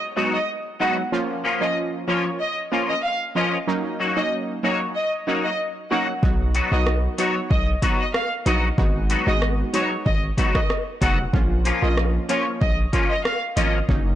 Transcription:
Already playing: downlifter
0.16 clean electric guitar F#3 B3 D#4 F#4, synth stab G#3 B3 D#4 F#4
0.33 violin section D#5
0.80 clean electric guitar F#3 B3 D#4 F#4, synth stab G#3 B3 D#4 F#4, violin section F#5
0.97 muted clean electric guitar stroke
1.12 synth stab F3 A#3 C#4 F4
1.44 clean electric guitar F3 A#3 C#4 F4
1.61 synth stab F3 A#3 C#4 F4, violin section D#5
2.07 synth stab F3 A#3 C#4 F4, clean electric guitar F3 A#3 C#4 F4, violin section C#5
2.25 muted clean electric guitar stroke
2.40 violin section D#5
2.72 synth stab F3 A#3 C#4 F4, clean electric guitar F3 A#3 C#4 F4
2.89 violin section D#5
3.04 violin section F5
3.35 synth stab F3 A#3 C#4 F4, clean electric guitar F3 A#3 C#4 F4, violin section D#5
3.67 synth stab F#3 A#3 C#4 D#4
4.00 clean electric guitar F#3 A#3 D#4 F#4
4.16 synth stab F#3 A#3 C#4 D#4, violin section D#5
4.63 synth stab F#3 A#3 C#4 D#4, clean electric guitar F#3 A#3 D#4 F#4, violin section C#5
4.80 muted clean electric guitar stroke
4.95 violin section D#5
5.27 synth stab F#3 A#3 C#4 D#4, clean electric guitar F#3 A#3 D#4 F#4
5.44 violin section D#5
5.91 clean electric guitar F#3 A#3 D#4 F#4, synth stab F#3 A#3 C#4 D#4, violin section F#5
6.08 muted clean electric guitar stroke
6.22 808-style bass B1, synth stab F#3 B3 D#4 F#4, kick
6.55 clean electric guitar F#3 B3 D#4 F#4, closed hi-hat
6.72 808-style bass B1, synth stab F#3 B3 D#4 F#4, violin section D#5
6.87 cross-stick
7.18 synth stab F#3 B3 D#4 F#4, clean electric guitar F#3 B3 D#4 F#4, violin section C#5, closed hi-hat
7.35 muted clean electric guitar stroke
7.51 808-style bass B1, violin section D#5, kick
7.82 clean electric guitar F#3 B3 D#4 F#4, synth stab F#3 B3 D#4 F#4, kick, closed hi-hat
7.99 violin section D#5
8.14 violin section F5, cross-stick
8.46 808-style bass A#1, clean electric guitar F#3 B3 D#4 F#4, synth stab F#3 B3 D#4 F#4, violin section D#5, closed hi-hat
8.78 808-style bass G#1, synth stab G#3 B3 D#4 F#4, kick
9.10 clean electric guitar F#3 B3 D#4 F#4, closed hi-hat
9.27 808-style bass G#1, synth stab G#3 B3 D#4 F#4, violin section D#5
9.42 cross-stick
9.73 clean electric guitar F#3 B3 D#4 F#4, synth stab G#3 B3 D#4 F#4, violin section C#5, closed hi-hat
9.91 muted clean electric guitar stroke
10.05 808-style bass G#1, violin section D#5, kick
10.37 clean electric guitar F#3 B3 D#4 F#4, synth stab G#3 B3 D#4 F#4, kick, closed hi-hat
10.54 violin section D#5, kick, cross-stick
10.70 cross-stick
11.01 808-style bass F1, clean electric guitar F#3 B3 D#4 F#4, synth stab G#3 B3 D#4 F#4, violin section F#5, kick, closed hi-hat
11.18 muted clean electric guitar stroke
11.33 808-style bass A#1, synth stab F3 A#3 C#4 F4, kick
11.65 clean electric guitar F3 A#3 C#4 F4, closed hi-hat
11.82 808-style bass A#1, synth stab F3 A#3 C#4 F4, violin section D#5
11.97 cross-stick
12.29 clean electric guitar F3 A#3 C#4 F4, synth stab F3 A#3 C#4 F4, violin section C#5, closed hi-hat
12.46 muted clean electric guitar stroke
12.61 808-style bass A#1, violin section D#5, kick
12.93 clean electric guitar F3 A#3 C#4 F4, synth stab F3 A#3 C#4 F4, kick, closed hi-hat
13.10 violin section D#5
13.25 violin section F5, cross-stick
13.56 808-style bass G#1, clean electric guitar F3 A#3 C#4 F4, synth stab F3 A#3 C#4 F4, violin section D#5, closed hi-hat
13.89 808-style bass F#1, synth stab F#3 A#3 C#4 D#4, kick

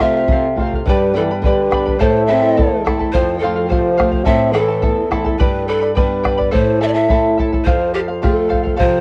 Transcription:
Already playing: nylon-string guitar C3
0.00 nylon-string guitar A3 C4 F4, trombone C4, charango A4 C5 F5, pan flute E5, bombo rim, bombo low
0.17 charango C5 F5
0.28 nylon-string guitar C3, charango A4, bombo low
0.32 charango C5 F5
0.56 nylon-string guitar A3 C4 F4, charango A4 C5, bombo low
0.61 charango F5
0.73 charango C5 F5, bombo low
0.86 nylon-string guitar G2, trombone G3, charango G4 B4 D5 G5 B5, pan flute B4, bombo low
1.14 trombone E3, nylon-string guitar G3 B3 D4, pan flute A4, charango B4 D5 G5 B5
1.31 charango B4 D5 B5
1.42 nylon-string guitar D3, trombone G3, pan flute B4, charango B4 G5, bombo low
1.46 charango D5 B5
1.71 nylon-string guitar G3 B3 D4, charango B4 D5 G5 B5, bombo rim, bombo low
1.86 charango B4 D5 B5, bombo low
1.99 nylon-string guitar A2, trombone A3, charango E4 A4 C5 E5 A5, pan flute C5, bombo low
2.26 nylon-string guitar A3 C4 E4, charango E4 A4 E5 A5, pan flute E5
2.32 trombone C4
2.42 charango E4 A4 A5
2.56 nylon-string guitar E2, charango E4 A4 E5 A5, bombo low
2.84 nylon-string guitar A3 C4 E4, charango E4 A4 E5 A5, bombo rim, bombo low
2.99 charango E4 A4 A5, bombo low
3.13 nylon-string guitar F2, trombone F3, charango A4 C5 F5, pan flute C5, bombo low
3.39 trombone F3, pan flute A4, charango A4 C5
3.43 nylon-string guitar A3 C4 F4, charango F5
3.56 charango C5 F5
3.68 nylon-string guitar C3, trombone F3, charango A4 C5 F5, pan flute C5, bombo low
3.97 nylon-string guitar A3 C4 F4, charango A4 C5 F5, bombo rim, bombo low
4.12 charango C5 F5, bombo low
4.25 nylon-string guitar A2, trombone C4, charango E4 A4 C5 E5 A5, pan flute E5, bombo low
4.53 trombone E3, nylon-string guitar A3 C4, charango E4 A4 E5 A5, pan flute A4, bombo rim
4.57 nylon-string guitar E4
4.68 charango E4 A4 A5
4.82 nylon-string guitar E2, charango E4 A4 E5 A5, bombo low
5.11 nylon-string guitar A3 C4 E4, charango E4 A4 E5 A5, bombo rim, bombo low
5.25 charango E4 A4 A5, bombo low
5.39 nylon-string guitar G2, charango G4 B4 D5 G5 B5, pan flute B4, bombo low
5.68 pan flute A4, charango B4 D5 G5 B5
5.81 charango B4 D5 B5
5.95 nylon-string guitar G3 B3 D4, pan flute B4, charango B4 D5 G5 B5, bombo low
6.24 charango B4 D5 G5 B5, bombo rim, bombo low
6.38 charango B4 D5 B5, bombo low
6.51 nylon-string guitar A2, charango E4 A4 C5 E5 A5, pan flute C5, bombo low
6.80 charango E4 A4 E5 A5, pan flute E5
6.88 pan flute D5
6.94 charango E4 A4 A5, pan flute E5
7.09 nylon-string guitar A3 C4 E4, charango E4 A4 E5 A5, bombo low
7.38 charango E4 A4 E5 A5, bombo low
7.53 charango E4 A4 A5, bombo low
7.65 nylon-string guitar F2, charango A4 C5 F5, pan flute C5, bombo low
7.94 pan flute G4, charango A4 C5 F5
8.08 charango C5 F5
8.22 nylon-string guitar A3 C4 F4, charango A4 C5 F5, pan flute A4, bombo low
8.49 charango A4 C5 F5, bombo low
8.63 charango C5 F5, bombo low
8.76 nylon-string guitar C3, trombone F3, charango A4 C5 F5, pan flute C5, bombo low

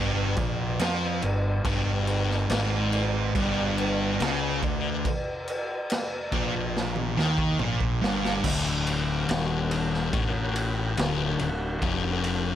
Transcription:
Already playing: fingered electric bass G1, distorted electric guitar G2
0.37 fingered electric bass A#1, distorted electric guitar A#2, kick, crash
0.79 fingered electric bass F2, distorted electric guitar F3, snare, crash
1.22 fingered electric bass G1, distorted electric guitar G2, crash
1.65 fingered electric bass G1, distorted electric guitar G2, kick, crash
2.07 crash
2.31 snare
2.50 fingered electric bass G#1, distorted electric guitar G#2, snare, crash
2.93 crash
3.35 fingered electric bass G1, distorted electric guitar G2, kick, crash
3.78 crash
4.20 fingered electric bass C#2, distorted electric guitar C#3, snare, crash
4.62 fingered electric bass D2, distorted electric guitar D3, kick, crash
5.05 kick, crash
5.48 crash
5.90 snare, crash
6.32 fingered electric bass A#1, distorted electric guitar A#2, kick, crash
6.77 snare
6.96 high tom
7.17 fingered electric bass D#2, distorted electric guitar D#3, snare
7.38 kick
7.59 fingered electric bass A#1, distorted electric guitar A#2, mid tom
7.81 kick
8.02 fingered electric bass G1, distorted electric guitar G2, snare
8.25 snare
8.44 fingered electric bass D1, distorted electric guitar D2, kick, crash
8.87 ride
9.28 fingered electric bass D#1, distorted electric guitar D#2, snare, ride
9.71 ride
9.94 snare
10.13 fingered electric bass A1, distorted electric guitar A2, kick, ride
10.56 ride
10.97 fingered electric bass D1, distorted electric guitar D2, snare, ride
11.39 fingered electric bass D1, distorted electric guitar D2, ride
11.82 fingered electric bass F1, distorted electric guitar F2, kick, ride
12.24 ride

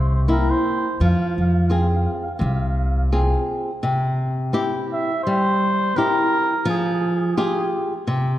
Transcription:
Already playing: upright bass C2, nylon-string guitar C3
0.01 muted trumpet C5
0.08 muted trumpet C5
0.14 muted trumpet C5
0.28 nylon-string guitar A#3 C4 E4, muted trumpet A#4
0.50 muted trumpet C5
1.00 upright bass F2, nylon-string guitar F3, muted trumpet F5
1.10 muted trumpet F5
1.21 muted trumpet F5
1.30 muted trumpet F5
1.38 upright bass F2, muted trumpet F5
1.46 muted trumpet F5
1.53 muted trumpet F5
1.59 muted trumpet F5
1.67 nylon-string guitar C4 F4, muted trumpet F5
1.71 nylon-string guitar G#4, muted trumpet F5
1.81 muted trumpet F5
1.89 muted trumpet F5
1.95 muted trumpet F5
2.05 muted trumpet F5
2.13 muted trumpet F5
2.22 muted trumpet F5
2.34 muted trumpet F5
2.39 upright bass C2, nylon-string guitar C3, muted trumpet F5
2.44 muted trumpet F5
2.54 muted trumpet F5
2.60 muted trumpet F5
2.69 muted trumpet F5
2.77 muted trumpet F5
2.85 muted trumpet F5
2.90 muted trumpet F5
2.97 muted trumpet F5
3.12 nylon-string guitar C4 F4 G#4
3.83 nylon-string guitar C3
4.53 nylon-string guitar C4 E4 G4
4.93 muted trumpet E5
5.24 nylon-string guitar G3, muted trumpet C5
5.96 nylon-string guitar C4 E4 G4, muted trumpet A#4
6.65 nylon-string guitar F3
6.70 muted trumpet G#4
6.78 muted trumpet G#4
6.84 muted trumpet G#4
6.93 muted trumpet G#4
7.00 muted trumpet G#4
7.07 muted trumpet G#4
7.16 muted trumpet G#4
7.27 muted trumpet G#4
7.32 muted trumpet G#4
7.37 nylon-string guitar F4 G4 G#4, muted trumpet G#4
7.45 muted trumpet G#4
7.56 muted trumpet G#4
8.07 nylon-string guitar C3

